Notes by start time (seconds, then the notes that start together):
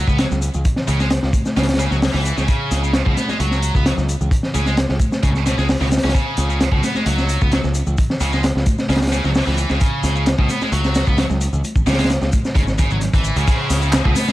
0.07 C#2 B3, kick, shaker
0.18 F#3, snare, closed hi-hat, shaker
0.31 C#2, snare, shaker
0.42 closed hi-hat, shaker
0.54 C#2, low conga, shaker
0.65 kick, closed hi-hat, shaker
0.76 snare, low conga
0.88 C#2 C#3, closed hi-hat, shaker
1.00 G#3, snare, shaker
1.10 snare, closed hi-hat, shaker
1.23 C#2, snare
1.33 kick, closed hi-hat, high conga, shaker
1.45 snare, high conga, shaker
1.57 C#2 C#3, snare, closed hi-hat, shaker
1.63 snare, closed hi-hat
1.69 snare, closed hi-hat, shaker
1.74 snare, closed hi-hat
1.79 C#3, snare, closed hi-hat, shaker
1.91 C#2 F#3, snare, shaker
2.02 snare, open hi-hat, shaker
2.14 C#2 E3, snare, shaker
2.25 closed hi-hat, shaker
2.37 C#2 C#3, snare, shaker
2.48 C#3, kick, closed hi-hat, shaker
2.71 C#2, snare, closed hi-hat, shaker
2.83 C#3, shaker
2.93 snare, closed hi-hat, shaker
3.06 C#2 B2, kick
3.17 B3, snare, closed hi-hat, high conga, shaker
3.28 G#3, snare, high conga, shaker
3.40 C#2 F#3, closed hi-hat, shaker
3.51 snare, shaker
3.62 closed hi-hat, shaker
3.75 C#2 B3, kick, shaker
3.86 F#3, snare, closed hi-hat, shaker
3.97 C#2, snare, shaker
4.09 closed hi-hat, shaker
4.21 C#2, low conga, shaker
4.31 kick, closed hi-hat, shaker
4.43 snare, low conga
4.54 C#2 C#3, closed hi-hat, high conga, shaker
4.66 G#3, snare, shaker
4.77 snare, closed hi-hat, shaker
4.89 C#2, snare
4.99 kick, closed hi-hat, high conga, shaker
5.11 snare, high conga, shaker
5.23 C#2 C#3, kick, closed hi-hat, shaker
5.35 snare, shaker
5.46 B2, snare, closed hi-hat, shaker
5.58 C#2 G#3, snare, shaker
5.69 snare, open hi-hat, shaker
5.81 C#2 B2, snare, shaker
5.92 snare, closed hi-hat, shaker
5.98 snare, closed hi-hat
6.03 C#2 C#4, snare, closed hi-hat, shaker
6.09 snare, closed hi-hat
6.15 C#3, kick, closed hi-hat, shaker
6.37 C#2, snare, closed hi-hat, shaker
6.50 C#3, shaker
6.61 snare, closed hi-hat, shaker
6.72 C#2 B2, kick
6.83 B3, snare, closed hi-hat, high conga, shaker
6.95 G#3, snare, high conga, shaker
7.06 C#2 F#3, closed hi-hat, shaker
7.18 snare, shaker
7.29 closed hi-hat, shaker
7.41 C#2 B3, kick, shaker
7.52 F#3, snare, closed hi-hat, shaker
7.64 C#2, snare, shaker
7.74 closed hi-hat, shaker
7.87 C#2, low conga, shaker
7.98 kick, closed hi-hat, shaker
8.10 snare, low conga
8.20 C#2 C#3, closed hi-hat, shaker
8.32 G#3, snare, shaker
8.43 snare, closed hi-hat, shaker
8.55 C#2, snare
8.66 kick, closed hi-hat, high conga, shaker
8.78 snare, high conga, shaker
8.89 C#2 C#3, snare, closed hi-hat, shaker
8.95 snare, closed hi-hat
9.01 snare, closed hi-hat, shaker
9.07 snare, closed hi-hat
9.12 C#3, snare, closed hi-hat, shaker
9.24 C#2 F#3, snare, shaker
9.35 snare, open hi-hat, shaker
9.47 C#2 E3, snare, shaker
9.58 closed hi-hat, shaker
9.70 C#2 C#3, snare, shaker
9.80 C#3, kick, closed hi-hat, shaker
10.03 C#2, snare, closed hi-hat, shaker
10.16 C#3, shaker
10.26 snare, closed hi-hat, shaker
10.38 C#2 B2, kick
10.49 B3, snare, closed hi-hat, high conga, shaker
10.61 G#3, snare, high conga, shaker
10.72 C#2 F#3, closed hi-hat, shaker
10.84 snare, shaker
10.95 snare, closed hi-hat, shaker
11.07 C#2 B3, kick, shaker
11.18 F#3, snare, closed hi-hat, shaker
11.30 C#2, snare, shaker
11.41 closed hi-hat, shaker
11.53 C#2, low conga, shaker
11.64 closed hi-hat, high conga, shaker
11.76 kick, low conga, shaker
11.87 C#2 C#3, snare, closed hi-hat, shaker
11.93 snare, closed hi-hat
11.99 G#3, snare, closed hi-hat, shaker
12.04 snare, closed hi-hat
12.10 snare, closed hi-hat, shaker
12.22 C#2, snare, shaker
12.32 kick, closed hi-hat, high conga, shaker
12.45 snare, high conga, shaker
12.55 G#1 C#3, kick, closed hi-hat, shaker
12.67 snare, shaker
12.78 C#3, kick, closed hi-hat, shaker
12.90 G#1 F#3, shaker
13.01 snare, closed hi-hat, shaker
13.13 G#1 E3, kick, closed hi-hat, shaker
13.24 shaker
13.36 C#2 C#3, closed hi-hat, shaker
13.47 C#3, kick, closed hi-hat, crash, shaker
13.70 C#2, snare, closed hi-hat, open hi-hat, shaker
13.82 C#3, shaker
13.93 snare, clap, closed hi-hat, shaker
14.05 C#2 B2, kick
14.16 B3, snare, closed hi-hat, open hi-hat, high conga, shaker
14.28 G#3, snare, high conga, shaker